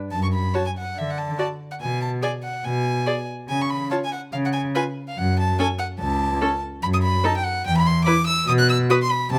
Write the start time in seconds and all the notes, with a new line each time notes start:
0.11 F#2 A5
0.23 C#6
0.33 B5
0.54 F#4 C#5 A5
0.66 G#5
0.78 F#5
0.97 D3 E5
1.10 F#5
1.18 A5
1.38 F#4 D5 A5
1.71 F#5
1.81 B2 G#5
2.02 A5
2.22 G#4 D5 G#5
2.43 F#5
2.64 B2 G#5
3.07 G#4 D5
3.49 C#3 G#5
3.61 C#6
3.70 B5
3.91 F4 C#5 A5
4.04 G#5
4.13 F#5
4.32 C#3 F5
4.45 F#5
4.53 G#5
4.75 F4 B4 G#5
5.08 F5
5.18 F#2 F#5
5.39 A5
5.59 C#4 A4 G#5
5.79 F#5
6.00 C#2 A5
6.41 C#4 A4
6.83 F#2 B5
6.94 D#6
7.03 B5
7.24 D#4 A4 A5
7.37 G5
7.44 F#5
7.65 E2 G5
7.77 B5
7.86 C6
8.05 E4 B4 D6
8.27 E6
8.47 B2 D#6
8.59 F#6
8.69 E6
8.89 F#4 B4 D#6
9.02 C6
9.11 B5
9.31 C3 A5